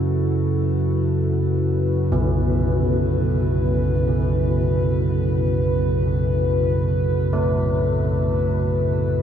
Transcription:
Already playing: synth drone F#2 C#3, analog synth pad E4 F#4 A4 B4
2.12 church bells B2
7.33 church bells A3

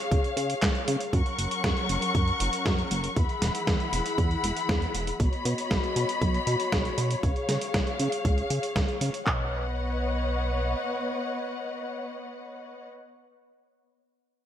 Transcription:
Already playing: string section G#4 C#5 F5
0.11 analog synth bass C#2, kick, closed hi-hat
0.24 closed hi-hat
0.37 analog synth bass C#3, closed hi-hat
0.50 closed hi-hat
0.62 analog synth bass C#2, kick, snare, clap, closed hi-hat
0.75 closed hi-hat
0.88 analog synth bass C#3, closed hi-hat
1.01 closed hi-hat
1.13 analog synth bass F#2, string section F#3 C#4 A#4 F#5 C#6, kick, closed hi-hat
1.26 closed hi-hat
1.39 analog synth bass F#1, closed hi-hat
1.51 closed hi-hat
1.64 analog synth bass F#2, kick, snare, closed hi-hat
1.77 closed hi-hat
1.89 analog synth bass F#1, closed hi-hat
2.02 closed hi-hat
2.15 analog synth bass F#2, kick, closed hi-hat
2.28 closed hi-hat
2.40 analog synth bass F#1, closed hi-hat
2.53 closed hi-hat
2.66 analog synth bass F#2, kick, snare, closed hi-hat
2.78 closed hi-hat
2.91 analog synth bass F#1, closed hi-hat
3.04 closed hi-hat
3.16 analog synth bass E2, string section E3 E4 G#4 F#5 B5, kick, closed hi-hat
3.29 closed hi-hat
3.42 analog synth bass E1, snare, closed hi-hat
3.55 closed hi-hat
3.67 analog synth bass E2, kick, snare, closed hi-hat
3.80 closed hi-hat
3.93 analog synth bass E1, closed hi-hat
4.06 closed hi-hat
4.18 analog synth bass E2, kick, closed hi-hat
4.31 closed hi-hat
4.44 analog synth bass E1, closed hi-hat
4.57 closed hi-hat
4.69 analog synth bass E2, kick, snare, closed hi-hat
4.82 closed hi-hat
4.94 analog synth bass E1, closed hi-hat
5.07 closed hi-hat
5.20 analog synth bass B1, string section B3 F#4 C#5 D#5 B5, kick, closed hi-hat
5.33 closed hi-hat
5.45 analog synth bass B2, closed hi-hat
5.58 closed hi-hat
5.71 analog synth bass B1, kick, snare, closed hi-hat
5.83 closed hi-hat
5.96 analog synth bass B2, closed hi-hat
6.09 closed hi-hat
6.22 analog synth bass B1, kick, closed hi-hat
6.34 closed hi-hat
6.47 analog synth bass B2, closed hi-hat
6.60 closed hi-hat
6.72 analog synth bass B1, kick, snare, closed hi-hat
6.85 closed hi-hat
6.98 analog synth bass B2, closed hi-hat
7.11 closed hi-hat
7.23 analog synth bass C#2, string section G#4 F5, kick, closed hi-hat
7.36 closed hi-hat
7.49 analog synth bass C#3, snare, closed hi-hat
7.61 closed hi-hat
7.74 analog synth bass C#2, kick, snare, closed hi-hat
7.87 closed hi-hat
7.99 analog synth bass C#3, closed hi-hat
8.12 closed hi-hat
8.25 analog synth bass C#2, kick, closed hi-hat
8.38 closed hi-hat
8.50 analog synth bass C#3, closed hi-hat
8.63 closed hi-hat
8.76 analog synth bass C#2, kick, snare, closed hi-hat
8.88 closed hi-hat
9.01 analog synth bass C#3, closed hi-hat
9.14 closed hi-hat
9.27 analog synth bass B1, string section B3 B4 C#5 D#5 F#5, kick, clap

